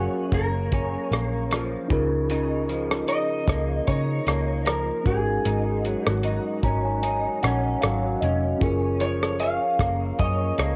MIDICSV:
0, 0, Header, 1, 6, 480
1, 0, Start_track
1, 0, Key_signature, -5, "major"
1, 0, Tempo, 789162
1, 1395, Time_signature, 4, 2, 24, 8
1, 6544, End_track
2, 0, Start_track
2, 0, Title_t, "Electric slide guitar"
2, 0, Program_c, 0, 29
2, 0, Note_on_c, 0, 66, 71
2, 208, Note_on_c, 0, 70, 73
2, 214, Note_off_c, 0, 66, 0
2, 897, Note_off_c, 0, 70, 0
2, 1878, Note_on_c, 0, 75, 89
2, 2355, Note_off_c, 0, 75, 0
2, 2358, Note_on_c, 0, 73, 84
2, 2838, Note_on_c, 0, 70, 80
2, 2851, Note_off_c, 0, 73, 0
2, 3083, Note_on_c, 0, 68, 72
2, 3084, Note_off_c, 0, 70, 0
2, 3703, Note_off_c, 0, 68, 0
2, 3703, Note_on_c, 0, 66, 72
2, 4015, Note_off_c, 0, 66, 0
2, 5482, Note_on_c, 0, 73, 81
2, 5718, Note_on_c, 0, 77, 88
2, 5726, Note_off_c, 0, 73, 0
2, 6200, Note_off_c, 0, 77, 0
2, 6202, Note_on_c, 0, 75, 89
2, 6544, Note_off_c, 0, 75, 0
2, 6544, End_track
3, 0, Start_track
3, 0, Title_t, "Tine electric piano"
3, 0, Program_c, 1, 4
3, 0, Control_c, 1, 64, 127
3, 0, Note_on_c, 1, 61, 58
3, 0, Note_on_c, 1, 68, 52
3, 0, Note_on_c, 1, 70, 61
3, 0, Note_on_c, 1, 77, 54
3, 1123, Note_off_c, 1, 61, 0
3, 1128, Note_off_c, 1, 77, 0
3, 1133, Note_off_c, 1, 68, 0
3, 1138, Note_off_c, 1, 70, 0
3, 1145, Note_on_c, 1, 63, 70
3, 1154, Note_on_c, 1, 65, 65
3, 1162, Control_c, 1, 64, 0
3, 1164, Note_on_c, 1, 68, 59
3, 1174, Note_on_c, 1, 70, 80
3, 1279, Control_c, 1, 64, 127
3, 3046, Note_off_c, 1, 63, 0
3, 3050, Note_off_c, 1, 65, 0
3, 3055, Note_off_c, 1, 68, 0
3, 3060, Note_off_c, 1, 70, 0
3, 3063, Note_on_c, 1, 61, 60
3, 3073, Note_on_c, 1, 63, 53
3, 3083, Control_c, 1, 64, 0
3, 3085, Note_on_c, 1, 66, 53
3, 3092, Note_on_c, 1, 70, 62
3, 3173, Control_c, 1, 64, 127
3, 4038, Note_on_c, 1, 82, 59
3, 4159, Note_off_c, 1, 82, 0
3, 4167, Note_on_c, 1, 80, 65
3, 4266, Note_off_c, 1, 80, 0
3, 4273, Note_on_c, 1, 80, 62
3, 4497, Note_off_c, 1, 80, 0
3, 4519, Note_on_c, 1, 78, 66
3, 4740, Note_off_c, 1, 78, 0
3, 4751, Note_on_c, 1, 77, 65
3, 4965, Note_off_c, 1, 61, 0
3, 4970, Note_off_c, 1, 63, 0
3, 4976, Note_off_c, 1, 66, 0
3, 4976, Note_off_c, 1, 77, 0
3, 4979, Note_off_c, 1, 70, 0
3, 4992, Note_on_c, 1, 75, 62
3, 5217, Note_off_c, 1, 75, 0
3, 5222, Note_on_c, 1, 61, 66
3, 5232, Note_on_c, 1, 65, 62
3, 5242, Note_on_c, 1, 68, 62
3, 5243, Control_c, 1, 64, 0
3, 5254, Note_on_c, 1, 70, 72
3, 5350, Control_c, 1, 64, 127
3, 6544, Note_off_c, 1, 61, 0
3, 6544, Note_off_c, 1, 65, 0
3, 6544, Note_off_c, 1, 68, 0
3, 6544, Note_off_c, 1, 70, 0
3, 6544, End_track
4, 0, Start_track
4, 0, Title_t, "Clean electric guitar"
4, 0, Program_c, 2, 27
4, 0, Note_on_c, 2, 42, 68
4, 0, Note_on_c, 2, 53, 57
4, 0, Note_on_c, 2, 58, 56
4, 0, Note_on_c, 2, 61, 58
4, 200, Note_off_c, 2, 58, 0
4, 203, Note_on_c, 2, 58, 53
4, 444, Note_off_c, 2, 61, 0
4, 447, Note_on_c, 2, 61, 60
4, 681, Note_off_c, 2, 58, 0
4, 683, Note_on_c, 2, 58, 57
4, 921, Note_off_c, 2, 53, 0
4, 923, Note_on_c, 2, 53, 62
4, 1159, Note_on_c, 2, 49, 73
4, 1206, Note_off_c, 2, 42, 0
4, 1392, Note_off_c, 2, 49, 0
4, 1399, Note_on_c, 2, 49, 75
4, 1402, Note_off_c, 2, 61, 0
4, 1405, Note_on_c, 2, 63, 62
4, 1423, Note_off_c, 2, 53, 0
4, 1637, Note_on_c, 2, 53, 56
4, 1876, Note_off_c, 2, 63, 0
4, 1878, Note_on_c, 2, 63, 61
4, 2121, Note_off_c, 2, 58, 0
4, 2124, Note_on_c, 2, 58, 49
4, 2362, Note_off_c, 2, 63, 0
4, 2365, Note_on_c, 2, 63, 64
4, 2595, Note_off_c, 2, 58, 0
4, 2602, Note_on_c, 2, 58, 57
4, 2833, Note_off_c, 2, 53, 0
4, 2840, Note_on_c, 2, 53, 62
4, 3082, Note_on_c, 2, 44, 77
4, 3130, Note_off_c, 2, 49, 0
4, 3130, Note_off_c, 2, 53, 0
4, 3131, Note_off_c, 2, 58, 0
4, 3306, Note_off_c, 2, 44, 0
4, 3314, Note_on_c, 2, 44, 76
4, 3318, Note_off_c, 2, 63, 0
4, 3321, Note_on_c, 2, 63, 66
4, 3556, Note_on_c, 2, 54, 55
4, 3789, Note_off_c, 2, 63, 0
4, 3796, Note_on_c, 2, 63, 60
4, 4043, Note_on_c, 2, 61, 52
4, 4268, Note_off_c, 2, 63, 0
4, 4275, Note_on_c, 2, 63, 61
4, 4521, Note_off_c, 2, 61, 0
4, 4523, Note_on_c, 2, 61, 56
4, 4763, Note_off_c, 2, 54, 0
4, 4766, Note_on_c, 2, 54, 59
4, 5005, Note_off_c, 2, 61, 0
4, 5008, Note_on_c, 2, 61, 53
4, 5234, Note_off_c, 2, 44, 0
4, 5235, Note_off_c, 2, 63, 0
4, 5244, Note_off_c, 2, 61, 0
4, 5244, Note_on_c, 2, 61, 65
4, 5473, Note_off_c, 2, 54, 0
4, 5476, Note_on_c, 2, 53, 58
4, 5719, Note_off_c, 2, 61, 0
4, 5721, Note_on_c, 2, 61, 59
4, 5963, Note_on_c, 2, 58, 53
4, 6194, Note_off_c, 2, 61, 0
4, 6196, Note_on_c, 2, 61, 63
4, 6434, Note_off_c, 2, 58, 0
4, 6436, Note_on_c, 2, 58, 58
4, 6544, Note_off_c, 2, 53, 0
4, 6544, Note_off_c, 2, 58, 0
4, 6544, Note_off_c, 2, 61, 0
4, 6544, End_track
5, 0, Start_track
5, 0, Title_t, "Picked electric bass"
5, 0, Program_c, 3, 34
5, 196, Note_on_c, 3, 30, 88
5, 580, Note_off_c, 3, 30, 0
5, 677, Note_on_c, 3, 34, 78
5, 1060, Note_off_c, 3, 34, 0
5, 1156, Note_on_c, 3, 37, 85
5, 1837, Note_off_c, 3, 37, 0
5, 2115, Note_on_c, 3, 37, 95
5, 2307, Note_off_c, 3, 37, 0
5, 2361, Note_on_c, 3, 49, 103
5, 2551, Note_off_c, 3, 49, 0
5, 2596, Note_on_c, 3, 37, 76
5, 2980, Note_off_c, 3, 37, 0
5, 3077, Note_on_c, 3, 32, 84
5, 3268, Note_off_c, 3, 32, 0
5, 3318, Note_on_c, 3, 32, 92
5, 3614, Note_off_c, 3, 32, 0
5, 3690, Note_on_c, 3, 32, 81
5, 3881, Note_off_c, 3, 32, 0
5, 4032, Note_on_c, 3, 32, 84
5, 4417, Note_off_c, 3, 32, 0
5, 4522, Note_on_c, 3, 34, 78
5, 4711, Note_off_c, 3, 34, 0
5, 4765, Note_on_c, 3, 32, 81
5, 4953, Note_off_c, 3, 32, 0
5, 5000, Note_on_c, 3, 29, 74
5, 5190, Note_off_c, 3, 29, 0
5, 5240, Note_on_c, 3, 30, 105
5, 5825, Note_off_c, 3, 30, 0
5, 5957, Note_on_c, 3, 30, 84
5, 6148, Note_off_c, 3, 30, 0
5, 6202, Note_on_c, 3, 42, 84
5, 6391, Note_off_c, 3, 42, 0
5, 6438, Note_on_c, 3, 37, 83
5, 6544, Note_off_c, 3, 37, 0
5, 6544, End_track
6, 0, Start_track
6, 0, Title_t, "Drums"
6, 194, Note_on_c, 9, 36, 80
6, 196, Note_on_c, 9, 42, 54
6, 255, Note_off_c, 9, 36, 0
6, 257, Note_off_c, 9, 42, 0
6, 436, Note_on_c, 9, 42, 58
6, 440, Note_on_c, 9, 36, 77
6, 497, Note_off_c, 9, 42, 0
6, 501, Note_off_c, 9, 36, 0
6, 681, Note_on_c, 9, 42, 54
6, 689, Note_on_c, 9, 37, 80
6, 742, Note_off_c, 9, 42, 0
6, 750, Note_off_c, 9, 37, 0
6, 919, Note_on_c, 9, 42, 64
6, 927, Note_on_c, 9, 37, 94
6, 980, Note_off_c, 9, 42, 0
6, 988, Note_off_c, 9, 37, 0
6, 1157, Note_on_c, 9, 36, 93
6, 1158, Note_on_c, 9, 42, 43
6, 1218, Note_off_c, 9, 36, 0
6, 1219, Note_off_c, 9, 42, 0
6, 1397, Note_on_c, 9, 42, 77
6, 1458, Note_off_c, 9, 42, 0
6, 1637, Note_on_c, 9, 42, 53
6, 1698, Note_off_c, 9, 42, 0
6, 1771, Note_on_c, 9, 37, 80
6, 1832, Note_off_c, 9, 37, 0
6, 1874, Note_on_c, 9, 42, 66
6, 1934, Note_off_c, 9, 42, 0
6, 2115, Note_on_c, 9, 36, 83
6, 2118, Note_on_c, 9, 42, 55
6, 2125, Note_on_c, 9, 37, 89
6, 2176, Note_off_c, 9, 36, 0
6, 2179, Note_off_c, 9, 42, 0
6, 2186, Note_off_c, 9, 37, 0
6, 2356, Note_on_c, 9, 42, 57
6, 2359, Note_on_c, 9, 36, 79
6, 2417, Note_off_c, 9, 42, 0
6, 2420, Note_off_c, 9, 36, 0
6, 2596, Note_on_c, 9, 42, 51
6, 2605, Note_on_c, 9, 37, 81
6, 2657, Note_off_c, 9, 42, 0
6, 2665, Note_off_c, 9, 37, 0
6, 2835, Note_on_c, 9, 42, 67
6, 2843, Note_on_c, 9, 37, 93
6, 2896, Note_off_c, 9, 42, 0
6, 2904, Note_off_c, 9, 37, 0
6, 3077, Note_on_c, 9, 36, 95
6, 3079, Note_on_c, 9, 42, 45
6, 3138, Note_off_c, 9, 36, 0
6, 3140, Note_off_c, 9, 42, 0
6, 3317, Note_on_c, 9, 42, 73
6, 3378, Note_off_c, 9, 42, 0
6, 3557, Note_on_c, 9, 42, 56
6, 3618, Note_off_c, 9, 42, 0
6, 3690, Note_on_c, 9, 37, 82
6, 3751, Note_off_c, 9, 37, 0
6, 3792, Note_on_c, 9, 42, 70
6, 3852, Note_off_c, 9, 42, 0
6, 4034, Note_on_c, 9, 36, 83
6, 4035, Note_on_c, 9, 42, 54
6, 4095, Note_off_c, 9, 36, 0
6, 4095, Note_off_c, 9, 42, 0
6, 4276, Note_on_c, 9, 42, 59
6, 4337, Note_off_c, 9, 42, 0
6, 4518, Note_on_c, 9, 42, 54
6, 4526, Note_on_c, 9, 37, 80
6, 4579, Note_off_c, 9, 42, 0
6, 4587, Note_off_c, 9, 37, 0
6, 4757, Note_on_c, 9, 42, 69
6, 4765, Note_on_c, 9, 37, 91
6, 4817, Note_off_c, 9, 42, 0
6, 4826, Note_off_c, 9, 37, 0
6, 5001, Note_on_c, 9, 42, 45
6, 5062, Note_off_c, 9, 42, 0
6, 5239, Note_on_c, 9, 36, 105
6, 5240, Note_on_c, 9, 42, 72
6, 5300, Note_off_c, 9, 36, 0
6, 5301, Note_off_c, 9, 42, 0
6, 5476, Note_on_c, 9, 42, 53
6, 5536, Note_off_c, 9, 42, 0
6, 5613, Note_on_c, 9, 37, 78
6, 5674, Note_off_c, 9, 37, 0
6, 5715, Note_on_c, 9, 42, 69
6, 5776, Note_off_c, 9, 42, 0
6, 5956, Note_on_c, 9, 36, 86
6, 5957, Note_on_c, 9, 42, 54
6, 5964, Note_on_c, 9, 37, 86
6, 6017, Note_off_c, 9, 36, 0
6, 6018, Note_off_c, 9, 42, 0
6, 6025, Note_off_c, 9, 37, 0
6, 6196, Note_on_c, 9, 42, 58
6, 6200, Note_on_c, 9, 36, 89
6, 6257, Note_off_c, 9, 42, 0
6, 6261, Note_off_c, 9, 36, 0
6, 6435, Note_on_c, 9, 42, 57
6, 6444, Note_on_c, 9, 37, 83
6, 6496, Note_off_c, 9, 42, 0
6, 6504, Note_off_c, 9, 37, 0
6, 6544, End_track
0, 0, End_of_file